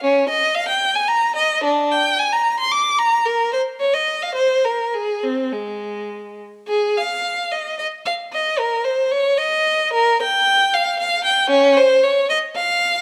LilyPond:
\new Staff \with { instrumentName = "Violin" } { \time 3/4 \key aes \major \tempo 4 = 112 des'8 ees''8 f''16 g''8 aes''16 bes''8 ees''8 | d'8 g''8 aes''16 bes''8 c'''16 d'''8 bes''8 | bes'8 c''8 des''16 ees''8 f''16 c''8 bes'8 | aes'8 c'8 aes4. r8 |
aes'8 f''4 ees''8 ees''8 f''8 | ees''8 bes'8 c''8 des''8 ees''4 | bes'8 g''4 f''8 f''8 g''8 | des'8 c''8 des''8 ees''8 f''4 | }